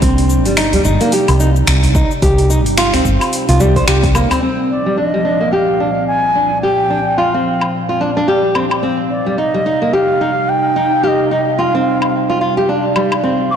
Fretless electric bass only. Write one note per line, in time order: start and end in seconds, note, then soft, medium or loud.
0.02 0.45 C2 loud
0.45 0.79 G1 medium
0.85 0.96 G1 medium
1.28 1.62 C2 medium
1.68 2.04 C2 loud
2.22 2.66 C2 loud
2.66 3.00 G1 medium
3.05 3.16 G1 medium
3.49 3.82 C2 medium
3.87 4.24 C2 medium